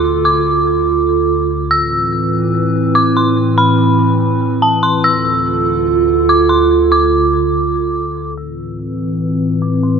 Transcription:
<<
  \new Staff \with { instrumentName = "Synth bell" } { \time 4/4 \key d \dorian \tempo 4 = 144 r8 d'''2.~ d'''8 | e'''2. d'''8 c'''8 | r8 b''2~ b''8 a''8 c'''8 | e'''2. d'''8 c'''8 |
r8 d'''2.~ d'''8 | e'''2. d'''8 c'''8 | }
  \new Staff \with { instrumentName = "Ambient pad" } { \clef bass \time 4/4 \key d \dorian <d, d f' a'>1 | <a, e c' b'>1~ | <a, e c' b'>1 | <d, d f' a'>1~ |
<d, d f' a'>1 | <a, e c' b'>1 | }
>>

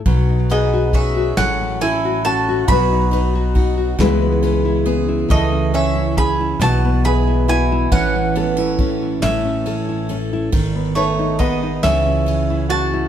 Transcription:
<<
  \new Staff \with { instrumentName = "Mandolin" } { \time 6/8 \key b \mixolydian \tempo 4. = 46 r8 dis''8 e''8 fis''8 gis''8 a''8 | b''4. r4. | dis''8 e''8 b''8 a''8 b''8 gis''8 | fis''4. e''4 r8 |
r8 cis''8 dis''8 e''4 a''8 | }
  \new Staff \with { instrumentName = "Nylon-string guitar" } { \time 6/8 \key b \mixolydian << { r16 dis'16 gis'16 fis'8 fis'16 r16 cis'16 a'16 fis'16 cis'16 fis'16 | <fis dis' fis' b'>16 dis'16 b'16 fis'16 dis'16 fis'16 <gis b e' b'>16 b16 b'16 e'16 b16 e'16 | r16 cis'8 e'16 cis'16 e'16 r16 b16 b'16 e'16 b16 e'16 | r16 cis'16 a'16 e'16 cis'16 e'8 cis'16 a'16 e'16 cis'16 e'16 |
r16 b16 b'16 dis'16 b16 dis'16 r16 cis'8 e'16 cis'16 e'16 | } \\ { b,4. a,4. | b,4. cis4. | cis4. b,4. | a,4. a,4. |
r4. cis4. | } >> }
  \new Staff \with { instrumentName = "Resonator guitar played with a steel bar" } { \time 6/8 \key b \mixolydian r8 b8 cis'8 cis'8 e'8 fis'8 | fis'4. r4. | a8 cis'8 gis'8 fis'8 gis'8 e'8 | cis'4. cis'4 r8 |
r8 a8 b8 cis'4 fis'8 | }
  \new Staff \with { instrumentName = "Steel-string acoustic guitar" } { \time 6/8 \key b \mixolydian fis8 dis'8 gis'8 fis8 cis'8 a'8 | fis8 dis'8 fis'8 e8 cis'8 gis'8 | e8 cis'4 e8 e'8 fis'8 | e8 b16 cis'16 a'8 a8 cis'8 a'8 |
dis8 dis'8 gis'8 e8 cis'4 | }
  \new Staff \with { instrumentName = "Upright bass" } { \clef bass \time 6/8 \key b \mixolydian b,,4. a,,4. | b,,4. cis,4. | cis,4. b,,4. | a,,4. a,,4. |
gis,,4. cis,4. | }
  \new DrumStaff \with { instrumentName = "Drums" } \drummode { \time 6/8 <bd cymr>8 cymr8 <bd cymr>8 <cymr sn>8 cymr8 cymr8 | <bd cymr>8 cymr8 <bd cymr>8 <cymr sn>8 cymr8 cymr8 | <bd cymr>8 cymr8 <bd cymr>8 <cymr sn>8 cymr8 cymr8 | <bd cymr>8 cymr8 <bd cymr>8 <cymr sn>8 cymr8 cymr8 |
<bd cymr>8 cymr8 <bd cymr>8 <cymr sn>8 cymr8 cymr8 | }
>>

